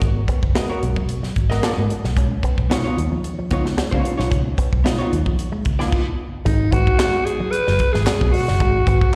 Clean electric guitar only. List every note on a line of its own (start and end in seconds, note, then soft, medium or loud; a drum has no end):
0.02 0.14 G#3 medium
0.16 muted clean electric guitar stroke soft
0.29 0.41 B3 medium
0.56 0.68 G#3 medium
0.83 muted clean electric guitar stroke soft
0.97 1.07 F#3 medium
1.23 1.34 F#3 medium
1.36 muted clean electric guitar stroke soft
1.51 1.61 G#3 medium
1.64 1.75 G#3 medium
1.91 muted clean electric guitar stroke soft
2.05 2.15 F#3 medium
2.17 2.29 C#4 medium
2.32 muted clean electric guitar stroke soft
2.44 2.56 B3 medium
2.71 2.83 G#3 medium
2.98 muted clean electric guitar stroke soft
3.12 3.22 F3 medium
3.39 3.49 F3 medium
3.51 muted clean electric guitar stroke soft
3.65 3.76 G#3 medium
3.77 3.90 G#3 medium
4.04 muted clean electric guitar stroke soft
4.19 4.29 F3 medium
4.31 4.43 C#4 medium
4.46 muted clean electric guitar stroke soft
4.58 4.70 B3 medium
4.85 4.97 G#3 medium
5.11 muted clean electric guitar stroke soft
5.26 5.37 F3 medium
5.52 5.63 G#3 medium
5.65 muted clean electric guitar stroke soft
5.79 5.90 B3 medium
6.45 6.58 G#3 medium
6.60 muted clean electric guitar stroke soft
6.73 6.85 B3 medium
6.99 7.11 G#3 medium
7.26 muted clean electric guitar stroke soft
7.40 7.51 F#3 medium
7.67 7.78 F#3 medium
7.81 muted clean electric guitar stroke soft
7.95 8.05 G#3 medium
8.08 8.19 G#3 medium
8.34 muted clean electric guitar stroke soft
8.48 8.59 F#3 medium
8.61 8.73 G#3 loud
8.75 muted clean electric guitar stroke soft
8.87 8.99 B3 medium